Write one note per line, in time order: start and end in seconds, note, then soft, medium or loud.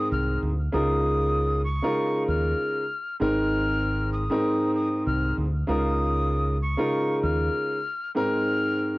0.00 0.48 G#2 loud
0.00 0.48 G#3 medium
0.00 0.48 C4 loud
0.00 0.49 D#4 medium
0.00 0.49 A#4 loud
0.12 0.37 C2 loud
0.12 0.39 F6 medium
0.43 0.68 D2 loud
0.72 1.80 C#2 loud
0.72 1.59 C#3 loud
0.72 1.59 G#3 medium
0.72 1.60 D#4 medium
0.72 1.60 F4 medium
0.72 1.60 A#4 loud
0.72 1.62 D#6 loud
1.64 2.23 C#6 medium
1.82 2.82 C#3 loud
1.82 2.82 G#3 medium
1.82 2.82 D#4 medium
1.82 2.82 F4 medium
1.82 2.82 A#4 loud
2.28 2.53 D#2 loud
2.28 3.17 F6 medium
3.20 4.28 G#1 loud
3.20 4.21 G#2 loud
3.20 4.21 G#3 medium
3.20 4.21 C4 medium
3.20 4.21 D#4 medium
3.20 4.22 A#4 loud
3.20 4.09 F6 loud
4.13 4.71 D#6 medium
4.30 5.43 G#2 loud
4.30 5.43 G#3 medium
4.30 5.43 C4 medium
4.30 5.43 D#4 medium
4.30 5.44 A#4 loud
4.75 5.03 D#6 medium
5.06 5.32 C2 loud
5.06 5.34 F6 medium
5.38 5.62 D2 loud
5.67 6.75 C#2 loud
5.67 6.54 C#3 loud
5.67 6.54 G#3 medium
5.67 6.54 D#4 medium
5.67 6.55 F4 medium
5.67 6.55 A#4 loud
5.67 6.57 D#6 loud
6.61 7.19 C#6 medium
6.77 7.76 C#3 loud
6.77 7.77 G#3 medium
6.77 7.77 D#4 medium
6.77 7.77 F4 medium
6.77 7.77 A#4 loud
7.22 7.48 D#2 loud
7.22 8.11 F6 medium
8.15 8.98 G#2 loud
8.15 8.98 G#3 medium
8.15 8.98 C4 medium
8.15 8.98 D#4 medium
8.15 8.98 A#4 loud
8.15 8.98 F6 loud